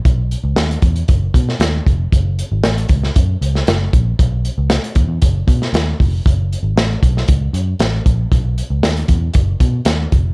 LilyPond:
<<
  \new Staff \with { instrumentName = "Picked electric bass" } { \clef bass \time 4/4 \key b \mixolydian \tempo 4 = 116 b,,8. cis,16 dis,8 e,8 fis,,8 b,8 dis,8 eis,,8 | fis,,8. gis,,16 a,,8 cis,8 fis,8 cis,8 fis,,8 ais,,8 | b,,8. cis,8 r16 dis,16 e,16 fis,,8 b,8 dis,8 eis,,8 | fis,,8. gis,,16 a,,8 b,,8 cis,8 fis,8 a,,8 ais,,8 |
b,,8. cis,16 dis,8 e,8 fis,,8 b,8 dis,8 eis,,8 | }
  \new DrumStaff \with { instrumentName = "Drums" } \drummode { \time 4/4 <hh bd>8 hh8 <hh sn>16 hh16 <hh bd>16 hh16 <hh bd>8 <hh bd>16 sn16 <hh sn>8 <hh bd>8 | <hh bd>8 hh8 <hh sn>16 hh16 <hh bd>16 sn16 <hh bd>8 hh16 sn16 <hh sn>8 <hh bd>8 | <hh bd>8 hh8 <hh sn>16 hh16 <hh bd>8 <hh bd>8 <hh bd>16 sn16 <hh sn>8 <hho bd>8 | <hh bd>8 hh8 <hh sn>8 <hh bd>16 sn16 <hh bd>8 hh8 <hh sn>8 <hh bd>8 |
<hh bd>8 hh8 <hh sn>16 hh16 <hh bd>8 <hh bd>8 <hh bd>8 <hh sn>8 <hh bd>8 | }
>>